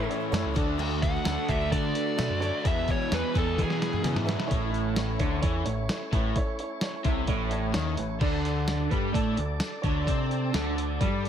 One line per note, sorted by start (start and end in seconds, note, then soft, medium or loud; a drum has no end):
0.00 0.31 A2 loud
0.00 0.54 A2 medium
0.00 0.32 E3 medium
0.00 0.56 E3 medium
0.00 0.32 A3 loud
0.00 0.54 A3 medium
0.00 0.55 A3 medium
0.00 0.21 A3 medium
0.00 0.20 C#4 medium
0.00 0.33 C#4 loud
0.00 0.54 C#4 medium
0.00 0.20 E4 medium
0.00 0.33 E4 loud
0.00 0.54 E4 medium
0.00 0.19 A4 medium
0.00 0.54 C#5 medium
0.09 0.28 C#4 loud
0.09 0.28 E4 medium
0.09 0.28 A4 medium
0.09 0.29 C#5 loud
0.09 closed hi-hat medium
0.20 0.32 A3 medium
0.20 0.32 C#4 medium
0.20 0.31 E4 medium
0.20 0.32 A4 medium
0.31 0.43 F#2 medium
0.31 0.55 A2 medium
0.31 0.56 A2 loud
0.31 0.56 E3 loud
0.31 0.55 E3 loud
0.31 0.52 A3 loud
0.31 0.55 A3 medium
0.31 0.51 C#4 loud
0.31 0.54 C#4 loud
0.31 0.55 C#4 medium
0.31 0.51 E4 loud
0.31 0.56 E4 loud
0.31 0.51 A4 loud
0.31 0.56 A4 loud
0.31 0.51 C#5 loud
0.31 snare loud
0.31 closed hi-hat loud
0.31 tambourine loud
0.46 0.55 C#2 medium
0.54 1.16 D2 medium
0.54 0.78 D3 medium
0.54 0.78 A3 medium
0.54 2.63 A3 medium
0.54 0.79 A3 medium
0.54 0.92 D4 loud
0.54 0.78 D4 medium
0.54 2.62 D4 medium
0.54 0.78 D4 loud
0.54 0.93 F#4 medium
0.54 2.62 F#4 medium
0.54 0.79 F#4 medium
0.54 0.79 F#4 loud
0.54 0.93 A4 medium
0.54 0.79 A4 medium
0.54 0.93 D5 loud
0.54 2.62 D5 medium
0.54 kick loud
0.54 closed hi-hat medium
0.78 0.91 D3 medium
0.78 1.25 D3 medium
0.78 0.91 A3 medium
0.78 1.25 A3 loud
0.78 0.91 D4 medium
0.78 1.26 D4 loud
0.78 0.91 F#4 medium
0.78 1.26 F#4 loud
0.78 0.90 A4 medium
0.78 crash loud
0.91 1.04 F#4 soft
0.91 1.03 A4 medium
1.02 1.15 A3 medium
1.02 1.21 D4 medium
1.02 1.15 D4 medium
1.02 1.21 F#4 medium
1.02 1.15 F#4 medium
1.02 1.22 A4 medium
1.02 1.14 A4 medium
1.02 1.22 B4 medium
1.02 1.51 F#5 loud
1.02 kick medium
1.02 closed hi-hat medium
1.15 1.26 D4 soft
1.15 1.26 F#4 medium
1.15 1.26 A4 medium
1.25 1.36 D2 loud
1.25 1.48 D3 medium
1.25 1.49 D3 medium
1.25 1.48 A3 medium
1.25 1.45 D4 medium
1.25 1.49 D4 medium
1.25 1.45 F#4 medium
1.25 1.49 F#4 medium
1.25 1.50 F#4 medium
1.25 1.45 A4 medium
1.25 1.50 A4 loud
1.25 1.45 D5 medium
1.25 snare loud
1.25 closed hi-hat loud
1.25 tambourine loud
1.48 1.72 D2 medium
1.48 1.71 D3 medium
1.48 1.61 A3 medium
1.48 1.72 A3 medium
1.48 1.67 D4 medium
1.48 1.61 D4 medium
1.48 1.72 D4 loud
1.48 1.68 F#4 medium
1.48 1.72 F#4 medium
1.48 1.60 F#4 medium
1.48 1.68 A4 medium
1.48 1.59 A4 medium
1.48 1.68 D5 medium
1.48 1.71 E5 loud
1.48 kick medium
1.48 closed hi-hat medium
1.60 1.72 D4 soft
1.60 1.72 F#4 medium
1.60 1.72 A4 medium
1.71 2.17 D3 loud
1.71 1.92 D3 medium
1.71 1.84 A3 medium
1.71 2.17 A3 loud
1.71 1.90 D4 medium
1.71 1.84 D4 medium
1.71 2.17 D4 loud
1.71 1.90 F#4 medium
1.71 1.83 F#4 medium
1.71 2.18 F#4 loud
1.71 1.91 A4 medium
1.71 1.81 A4 medium
1.71 2.67 D5 loud
1.71 kick medium
1.71 closed hi-hat loud
1.82 2.08 D4 soft
1.82 2.06 F#4 medium
1.82 2.05 A4 medium
1.93 2.13 D4 medium
1.93 2.13 F#4 medium
1.93 2.13 A4 medium
1.93 2.14 B4 medium
1.93 closed hi-hat medium
2.06 2.17 D4 soft
2.06 2.17 F#4 medium
2.06 2.18 A4 medium
2.16 2.29 B2 medium
2.16 2.41 D3 medium
2.16 2.40 D3 medium
2.16 2.41 A3 medium
2.16 2.40 A3 medium
2.16 2.36 D4 loud
2.16 2.40 D4 loud
2.16 2.41 D4 medium
2.16 2.36 F#4 medium
2.16 2.42 F#4 medium
2.16 2.41 F#4 medium
2.16 2.37 A4 medium
2.16 2.42 A4 loud
2.16 2.37 E5 loud
2.16 snare loud
2.16 closed hi-hat loud
2.16 tambourine loud
2.30 2.50 F#2 medium
2.39 2.63 D3 medium
2.39 2.63 A3 medium
2.39 2.65 A3 medium
2.39 2.59 D4 loud
2.39 2.63 D4 medium
2.39 2.65 D4 medium
2.39 2.59 F#4 loud
2.39 2.64 F#4 medium
2.39 2.60 A4 loud
2.39 2.60 C#5 loud
2.39 closed hi-hat medium
2.43 2.66 F#4 medium
2.62 3.09 E2 loud
2.62 2.85 E2 loud
2.62 3.09 B2 loud
2.62 3.10 E3 medium
2.62 2.77 E3 medium
2.62 3.10 G#3 loud
2.62 4.49 G#3 medium
2.62 2.82 B3 medium
2.62 3.10 B3 loud
2.62 2.77 B3 medium
2.62 4.49 B3 medium
2.62 2.82 E4 medium
2.62 2.77 E4 medium
2.62 4.49 E4 medium
2.62 2.82 G#4 medium
2.62 3.11 G#4 loud
2.62 2.77 G#4 medium
2.62 2.83 B4 loud
2.62 2.75 B4 medium
2.62 4.49 B4 medium
2.62 kick loud
2.62 closed hi-hat loud
2.67 2.90 E5 loud
2.76 2.90 E4 soft
2.76 2.89 G#4 medium
2.76 2.88 B4 medium
2.88 3.07 B3 medium
2.88 3.01 B3 medium
2.88 3.07 E4 medium
2.88 3.01 E4 medium
2.88 3.07 G#4 medium
2.88 3.01 G#4 medium
2.88 3.14 C#5 medium
2.88 3.07 D5 medium
2.88 kick medium
2.88 closed hi-hat medium
2.93 3.01 B4 medium
3.02 3.12 E4 soft
3.02 3.12 G#4 soft
3.02 3.12 B4 medium
3.09 3.33 E2 medium
3.09 3.22 E2 loud
3.09 3.33 B2 medium
3.09 3.34 E3 medium
3.09 3.35 E3 medium
3.09 3.33 G#3 medium
3.09 3.29 B3 medium
3.09 3.35 B3 medium
3.09 3.33 B3 medium
3.09 3.29 E4 medium
3.09 3.34 E4 medium
3.09 3.30 G#4 medium
3.09 3.34 G#4 medium
3.09 3.30 C#5 medium
3.09 snare loud
3.09 closed hi-hat loud
3.09 tambourine loud
3.14 3.37 B4 medium
3.14 3.35 B4 medium
3.33 3.56 E2 medium
3.33 3.60 E2 medium
3.33 3.56 B2 medium
3.33 3.57 E3 medium
3.33 3.58 G#3 medium
3.33 3.52 B3 medium
3.33 3.46 B3 medium
3.33 3.58 B3 medium
3.33 3.52 E4 medium
3.33 3.46 E4 medium
3.33 3.53 G#4 medium
3.33 3.47 G#4 medium
3.33 3.59 G#4 loud
3.33 3.53 B4 medium
3.33 3.46 B4 medium
3.33 kick medium
3.33 closed hi-hat medium
3.39 3.60 A4 medium
3.47 3.58 E4 soft
3.47 3.58 B4 soft
3.55 4.03 E2 loud
3.55 4.05 B2 loud
3.55 3.78 E3 loud
3.55 4.04 E3 loud
3.55 3.75 B3 medium
3.55 3.69 B3 medium
3.55 3.75 E4 medium
3.55 3.70 E4 medium
3.55 3.75 G#4 medium
3.55 3.75 B4 medium
3.55 kick medium
3.55 closed hi-hat loud
3.59 4.05 G#3 loud
3.59 4.06 B3 loud
3.59 4.06 G#4 loud
3.59 4.03 G#4 medium
3.59 3.69 B4 medium
3.70 3.94 E4 medium
3.70 3.92 G#4 medium
3.70 3.91 B4 medium
3.70 snare medium
3.77 3.98 B3 medium
3.77 3.98 E4 medium
3.77 3.98 G#4 medium
3.77 3.98 B4 medium
3.82 snare medium
3.82 closed hi-hat medium
3.92 4.03 E4 soft
3.92 4.04 G#4 medium
3.92 4.04 B4 medium
3.92 mid tom medium
4.01 4.27 E2 medium
4.01 4.14 C#3 medium
4.01 4.27 E3 medium
4.01 4.21 B3 loud
4.01 4.25 B3 medium
4.01 4.21 E4 medium
4.01 4.26 E4 medium
4.01 4.21 G#4 medium
4.01 4.21 B4 loud
4.01 4.28 B4 medium
4.01 snare medium
4.01 closed hi-hat loud
4.06 4.27 B2 medium
4.06 4.27 E3 medium
4.06 4.28 G#3 medium
4.06 4.28 B3 medium
4.06 4.26 G#4 loud
4.06 4.29 G#4 loud
4.15 4.35 G#2 medium
4.15 snare medium
4.24 4.49 E2 medium
4.24 4.44 B3 loud
4.24 4.50 B3 medium
4.24 4.44 E4 loud
4.24 4.50 E4 medium
4.24 4.44 G#4 loud
4.24 4.51 G#4 medium
4.24 4.45 B4 loud
4.28 4.49 B2 medium
4.28 4.50 E3 medium
4.28 4.50 G#3 medium
4.28 4.50 B3 medium
4.28 4.50 G#4 medium
4.28 4.51 B4 medium
4.28 snare loud
4.28 closed hi-hat medium
4.40 snare medium
4.46 4.67 E4 loud
4.46 4.67 A4 loud
4.46 4.68 C#5 loud
4.51 5.16 A1 medium
4.51 5.20 A2 loud
4.51 8.20 A3 medium
4.51 8.19 C#4 medium
4.51 8.19 E4 medium
4.51 8.19 C#5 medium
4.51 kick loud
4.51 closed hi-hat loud
4.70 4.90 E4 medium
4.70 4.90 A4 medium
4.70 4.91 E5 loud
4.74 closed hi-hat medium
4.94 5.14 E4 medium
4.94 5.14 A4 medium
4.94 5.15 C#5 medium
4.94 snare loud
4.94 closed hi-hat loud
4.94 tambourine loud
5.18 5.42 D2 medium
5.18 5.43 D3 loud
5.18 5.38 E4 medium
5.18 5.38 A4 medium
5.18 5.38 C#5 loud
5.18 kick loud
5.18 closed hi-hat medium
5.41 5.65 E2 loud
5.41 5.66 E3 loud
5.41 5.61 E4 loud
5.41 5.61 A4 loud
5.41 5.61 C#5 loud
5.41 kick loud
5.41 closed hi-hat loud
5.65 5.88 A1 medium
5.65 5.85 A2 medium
5.65 5.84 E4 loud
5.65 5.84 A4 medium
5.65 5.84 C#5 loud
5.65 closed hi-hat medium
5.89 6.08 E4 medium
5.89 6.08 A4 medium
5.89 6.08 C#5 medium
5.89 snare loud
5.89 closed hi-hat loud
5.89 tambourine loud
6.12 6.34 A1 medium
6.12 6.35 A2 loud
6.12 6.32 E4 medium
6.12 6.32 A4 medium
6.12 6.32 B4 loud
6.12 kick loud
6.12 closed hi-hat medium
6.36 6.54 E4 loud
6.36 6.55 A4 loud
6.36 6.55 C#5 loud
6.36 kick loud
6.36 closed hi-hat loud
6.59 6.78 E4 medium
6.59 6.78 A4 medium
6.59 6.78 C#5 loud
6.59 closed hi-hat medium
6.81 7.00 E4 medium
6.81 7.01 A4 medium
6.81 7.01 C#5 loud
6.81 snare loud
6.81 closed hi-hat loud
6.81 tambourine loud
7.04 7.27 C2 medium
7.04 7.26 C3 loud
7.04 7.24 E4 loud
7.04 7.24 A4 medium
7.04 7.24 E5 loud
7.04 kick loud
7.04 closed hi-hat medium
7.26 7.72 A1 loud
7.26 7.73 A2 loud
7.26 7.46 E4 loud
7.26 7.47 A4 loud
7.26 7.47 C#5 loud
7.26 kick loud
7.26 closed hi-hat medium
7.50 7.69 E4 loud
7.50 7.69 A4 medium
7.50 7.70 C#5 loud
7.50 closed hi-hat medium
7.73 7.97 D#2 medium
7.73 7.98 D#3 loud
7.73 7.93 E4 medium
7.73 7.93 A4 medium
7.73 7.93 C#5 loud
7.73 snare loud
7.73 closed hi-hat loud
7.73 tambourine loud
7.96 8.20 A1 medium
7.96 8.17 A2 medium
7.96 8.16 E4 medium
7.96 8.16 A4 medium
7.96 8.17 B4 loud
7.96 closed hi-hat medium
8.20 8.87 D2 medium
8.20 8.90 D3 loud
8.20 11.29 D4 medium
8.20 8.40 D4 loud
8.20 11.29 A4 medium
8.20 8.40 A4 loud
8.20 11.29 D5 medium
8.20 8.40 D5 loud
8.20 kick loud
8.20 crash loud
8.44 8.63 D4 medium
8.44 8.63 A4 medium
8.44 8.64 D5 loud
8.44 closed hi-hat medium
8.67 8.86 D4 medium
8.67 8.86 A4 medium
8.67 8.86 D5 loud
8.67 snare loud
8.67 closed hi-hat loud
8.67 tambourine loud
8.89 9.13 G2 loud
8.89 9.14 G3 loud
8.89 9.09 D4 medium
8.89 9.09 A4 medium
8.89 9.09 B4 loud
8.89 kick loud
8.89 closed hi-hat medium
9.12 9.36 A2 loud
9.12 9.38 A3 loud
9.12 9.32 D4 loud
9.12 9.32 A4 loud
9.12 9.32 D5 loud
9.12 kick loud
9.12 closed hi-hat loud
9.35 9.59 D2 medium
9.35 9.55 D4 medium
9.35 9.56 A4 medium
9.35 9.55 D5 loud
9.35 closed hi-hat medium
9.40 9.57 D3 medium
9.59 9.79 D4 medium
9.59 9.79 A4 medium
9.59 9.79 D5 medium
9.59 snare loud
9.59 closed hi-hat loud
9.59 tambourine loud
9.81 10.06 D2 medium
9.81 10.07 D3 loud
9.81 10.01 D4 medium
9.81 10.01 A4 medium
9.81 10.02 C#5 loud
9.81 kick loud
9.81 closed hi-hat medium
10.03 10.24 D4 loud
10.03 10.24 A4 loud
10.03 10.24 D5 loud
10.07 10.50 C3 medium
10.07 10.53 C4 loud
10.07 kick loud
10.07 closed hi-hat loud
10.29 10.48 D4 medium
10.29 10.48 A4 medium
10.29 10.48 D5 medium
10.29 closed hi-hat medium
10.51 10.97 D2 loud
10.51 11.00 D3 loud
10.51 10.71 D4 medium
10.51 10.71 A4 medium
10.51 10.72 D5 loud
10.51 snare loud
10.51 closed hi-hat loud
10.51 tambourine loud
10.74 10.94 D4 medium
10.74 10.95 A4 medium
10.74 10.95 D5 loud
10.78 closed hi-hat medium
11.00 11.29 G2 medium
11.00 11.29 G3 loud
11.00 11.19 D4 loud
11.00 11.19 A4 loud
11.00 11.19 D5 loud
11.00 kick loud
11.00 closed hi-hat medium
11.23 11.29 D4 medium
11.23 11.29 A4 medium
11.23 11.29 D5 loud
11.23 closed hi-hat medium